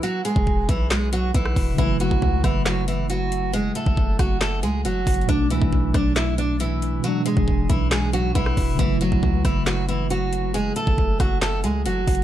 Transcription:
<<
  \new Staff \with { instrumentName = "Steel-string acoustic guitar" } { \time 4/4 \key fis \minor \tempo 4 = 137 <fis fis'>8 <gis gis'>4 <e e'>8 <gis gis'>8 <fis fis'>8 <e e'>4 | <e e'>8 <fis fis'>4 <e e'>8 <fis fis'>8 <e e'>8 <fis fis'>4 | <gis gis'>8 <a a'>4 <fis fis'>8 <a a'>8 <gis gis'>8 <fis fis'>4 | <d' d''>8 <e e'>4 <d' d''>8 <e e'>8 <d' d''>8 <e e'>4 |
<fis fis'>8 <gis gis'>4 <e e'>8 <gis gis'>8 <fis fis'>8 <e e'>4 | <e e'>8 <fis fis'>4 <e e'>8 <fis fis'>8 <e e'>8 <fis fis'>4 | <gis gis'>8 <a a'>4 <fis fis'>8 <a a'>8 <gis gis'>8 <fis fis'>4 | }
  \new Staff \with { instrumentName = "Tine electric piano" } { \clef bass \time 4/4 \key fis \minor r1 | <cis fis a e'>1~ | <cis fis a e'>1 | <b, fis a d'>1 |
<b, e gis d'>1 | <cis fis a e'>1 | r1 | }
  \new Staff \with { instrumentName = "808-style bass" } { \clef bass \time 4/4 \key fis \minor r8. e,,8. b,,4. b,,8 e,,8 | fis,,8. fis,,16 cis,8 fis,,2~ fis,,8~ | fis,,8 r16 fis,,16 fis,,8 fis,,4 cis,8 fis,,8 fis,,8 | b,,8 cis,16 b,,8. b,,2~ b,,8 |
r8. e,,8. b,,4. b,,8 e,,8 | fis,,8. fis,,16 cis,8 fis,,2~ fis,,8~ | fis,,8 r16 fis,,16 fis,,8 fis,,4 cis,8 fis,,8 fis,,8 | }
  \new DrumStaff \with { instrumentName = "Drums" } \drummode { \time 4/4 hh8 hh16 bd16 bd8 <hh bd>8 <hc hh sn>8 hh8 <hh bd>16 ss16 <hho bd>8 | <hh bd>8 hh16 bd16 bd8 <hh bd ss>8 <hc hh sn>8 hh8 hh8 hh8 | hh8 hh16 bd16 bd8 <hh bd ss>8 <hc hh sn>8 hh8 \tuplet 3/2 { hh16 r16 r16 <hh hho bd>16 hh16 hh16 } | <hh bd>8 hh16 bd16 bd8 <hh bd ss>8 <hc hh sn>8 hh8 hh8 hh8 |
hh8 hh16 bd16 bd8 <hh bd>8 <hc hh sn>8 hh8 <hh bd>16 ss16 <hho bd>8 | <hh bd>8 hh16 bd16 bd8 <hh bd ss>8 <hc hh sn>8 hh8 hh8 hh8 | hh8 hh16 bd16 bd8 <hh bd ss>8 <hc hh sn>8 hh8 \tuplet 3/2 { hh16 r16 r16 <hh hho bd>16 hh16 r16 } | }
>>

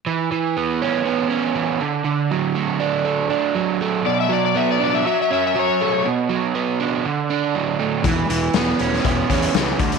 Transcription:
<<
  \new Staff \with { instrumentName = "Electric slide guitar" } { \time 4/4 \key e \dorian \tempo 4 = 120 r1 | r1 | d''16 e''16 d''16 d''16 e''16 d''16 d''16 e''16 e''16 e''16 e''16 e''16 cis''4 | r1 |
r1 | }
  \new Staff \with { instrumentName = "Overdriven electric guitar" } { \time 4/4 \key e \dorian e8 e8 b8 cis'8 b8 cis'8 e8 d8 | d8 fis8 a8 d'8 a8 d'8 fis8 a8 | b,8 fis8 b8 d'8 fis8 cis'8 fis8 a8 | b,8 fis8 b8 d'8 d8 d'8 fis8 a8 |
e8 e8 b8 cis'8 b8 cis'8 e8 d8 | }
  \new Staff \with { instrumentName = "Fingered electric bass" } { \clef bass \time 4/4 \key e \dorian r1 | r1 | r1 | r1 |
e,,8 e,,8 e,,8 e,,8 e,,8 e,8 cis,8 d,8 | }
  \new DrumStaff \with { instrumentName = "Drums" } \drummode { \time 4/4 r4 r4 r4 r4 | r4 r4 r4 r4 | r4 r4 r4 r4 | r4 r4 r4 r4 |
<hh bd>8 hh8 <hh sn>8 hh16 sn16 <hh bd>8 <hh bd>16 hh16 <hh sn>8 <hh bd>16 hh16 | }
>>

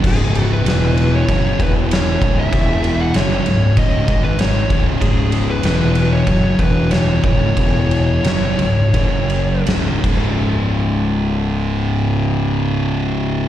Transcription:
<<
  \new Staff \with { instrumentName = "Lead electric guitar" } { \time 4/4 \key cis \minor \tempo 4 = 94 gis'8. b'4 cis''8. b'8 cis''8. e''16~ | e''8. fis''16 cis''4 dis''8. b'16 cis''8. r16 | gis'8. b'4 cis''8. b'8 cis''8 cis''8~ | cis''2. r4 |
r1 | }
  \new Staff \with { instrumentName = "Distorted electric guitar" } { \clef bass \time 4/4 \key cis \minor <cis, gis, cis>4 <e, b, e>4 <fis, cis fis>8 <e, b, e>4 <cis, gis, cis>8 | <e, b, e>4 <fis, cis fis>8 <cis, gis,>8 <cis, gis, cis>8 <gis, dis gis>4 <cis, gis, cis>8 | <cis, gis, cis>4 <e, b, e>4 <fis, cis fis>8 <e, b, e>4 <cis, gis, cis>8 | <e, b, e>4 <fis, cis fis>8 <cis, gis,>8 <fis, cis fis>4 <cis, gis, cis>8 <cis, gis, cis>8~ |
<cis, gis, cis>1 | }
  \new Staff \with { instrumentName = "Distorted electric guitar" } { \clef bass \time 4/4 \key cis \minor <cis, gis, cis>4 <e, b, e>4 <fis, cis fis>8 <e, b, e>4 <cis, gis, cis>8 | <e, b, e>4 <fis, cis fis>8 <cis, gis,>8 <cis, gis, cis>8 <gis, dis gis>4 <cis, gis, cis>8 | <cis, gis, cis>4 <e, b, e>4 <fis, cis fis>8 <e, b, e>4 <cis, gis, cis>8 | <e, b, e>4 <fis, cis fis>8 <cis, gis,>8 <fis, cis fis>4 <cis, gis, cis>8 <cis, gis, cis>8~ |
<cis, gis, cis>1 | }
  \new Staff \with { instrumentName = "Fingered electric bass" } { \clef bass \time 4/4 \key cis \minor cis,,4 e,,4 fis,,8 e,,4 cis,,8 | e,,4 fis,,8 cis,,8 cis,,8 gis,,4 cis,,8 | cis,,4 e,,4 fis,,8 e,,4 cis,,8 | e,,4 fis,,8 cis,,8 fis,,4 cis,,8 cis,,8~ |
cis,,1 | }
  \new DrumStaff \with { instrumentName = "Drums" } \drummode { \time 4/4 <cymc bd>8 cymr8 <cymr sn>8 cymr8 <bd cymr>8 <bd cymr>8 <cymr sn>8 <bd cymr>8 | <bd cymr>8 cymr8 <cymr sn>8 cymr8 <bd cymr>8 <bd cymr>8 <cymr sn>8 <bd cymr>8 | <bd cymr>8 cymr8 <cymr sn>8 cymr8 <bd cymr>8 <bd cymr>8 <cymr sn>8 <bd cymr>8 | <bd cymr>8 cymr8 <cymr sn>8 cymr8 <bd cymr>8 cymr8 <cymr sn>8 <cymc bd>8 |
r4 r4 r4 r4 | }
>>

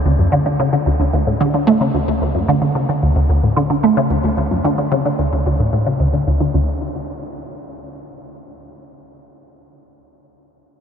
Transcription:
\new Staff \with { instrumentName = "Synth arpeggio sound" } { \clef bass \time 4/4 \key d \major \tempo 4 = 111 d,16 fis,16 d16 d16 cis16 d16 d,16 d,16 d,16 a,16 d16 d16 a16 cis16 d,16 d,16 | d,16 fis,16 d16 d16 cis16 d16 d,16 d,16 d,16 a,16 d16 d16 a16 cis16 d,16 d,16 | d,16 fis,16 d16 d16 cis16 d16 d,16 d,16 d,16 a,16 a,16 cis16 d,16 d16 d,16 d16 | d,8 r2. r8 |
r1 | }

